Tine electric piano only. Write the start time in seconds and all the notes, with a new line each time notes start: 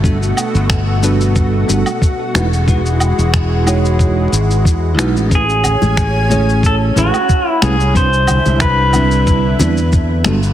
0.03 G3 B3 D4 F#4 A4
1.03 G3 B3 D4 F#4 B4
1.68 G3 B3 D4 F#4 A4
2.34 G#3 D#4 E4 F#4 B4
2.67 G#3 D#4 E4 F#4 B4
3.66 G#3 D#4 E4 F#4 C#5
4.97 G#3 D#4 E4 F#4 B4
5.30 A3 C#4 E4 G#4 B4
6.29 A3 C#4 E4 G#4 C#5
6.96 A3 C#4 E4 G#4 B4
7.62 A3 C#4 E4 G#4 B4
7.94 G3 C4 D4 E4 B4
8.94 G3 C4 D4 E4 B4
9.59 G3 C4 D4 E4 B4
10.25 G3 B3 D4 F#4 A4